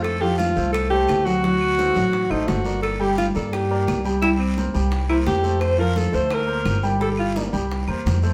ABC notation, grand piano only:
X:1
M:4/4
L:1/8
Q:1/4=172
K:Dphr
V:1 name="Grand piano"
[A,Ac] [F,Ff]2 [A,Ac]2 [A,Ac]2 [_G,_G_g] | [^F,^F^f]2 [A,Ac] [F,Ff]2 [A,Ac]2 [B,Bd]- | [B,Bd] [G,Gg]2 [B,Bd]2 [B,Bd]2 [G,Gg] | [G,Gg]2 [B,Bc] [G,Gg]2 [B,Bc]2 [A,Ac]- |
[A,Ac] [F,Ff]2 [A,Ac]2 [B,Bc]2 [G,Gg] | [G,Gg]2 [B,Bd] [G,Gg]2 [B,Bc]2 [A,Ac] |]